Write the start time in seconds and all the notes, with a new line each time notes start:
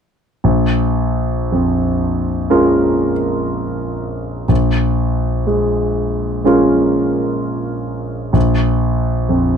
0.44 A#1
1.52 F2
2.50 G#3 C#4 F4 A#4
4.48 A#1
5.47 G#3
6.44 G#3 C#4 F4 A#4
8.33 A#1
9.29 F2